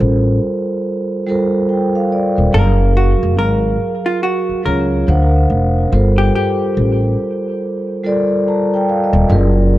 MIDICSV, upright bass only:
0, 0, Header, 1, 3, 480
1, 0, Start_track
1, 0, Tempo, 845070
1, 1441, Time_signature, 4, 2, 24, 8
1, 5556, End_track
2, 0, Start_track
2, 0, Title_t, "Upright bass"
2, 0, Program_c, 0, 32
2, 1, Note_on_c, 0, 33, 98
2, 211, Note_off_c, 0, 33, 0
2, 1351, Note_on_c, 0, 27, 83
2, 1432, Note_off_c, 0, 27, 0
2, 1442, Note_on_c, 0, 30, 107
2, 1778, Note_off_c, 0, 30, 0
2, 1833, Note_on_c, 0, 29, 87
2, 1924, Note_off_c, 0, 29, 0
2, 1924, Note_on_c, 0, 32, 85
2, 2132, Note_off_c, 0, 32, 0
2, 2645, Note_on_c, 0, 37, 88
2, 2853, Note_off_c, 0, 37, 0
2, 2886, Note_on_c, 0, 38, 99
2, 3093, Note_off_c, 0, 38, 0
2, 3122, Note_on_c, 0, 29, 85
2, 3331, Note_off_c, 0, 29, 0
2, 3365, Note_on_c, 0, 31, 100
2, 3573, Note_off_c, 0, 31, 0
2, 3845, Note_on_c, 0, 33, 97
2, 4053, Note_off_c, 0, 33, 0
2, 5186, Note_on_c, 0, 27, 95
2, 5269, Note_off_c, 0, 27, 0
2, 5279, Note_on_c, 0, 30, 103
2, 5556, Note_off_c, 0, 30, 0
2, 5556, End_track
3, 0, Start_track
3, 0, Title_t, "Muted upright bass strokes"
3, 2552, Note_on_c, 9, 29, 46
3, 2609, Note_off_c, 9, 29, 0
3, 5556, End_track
0, 0, End_of_file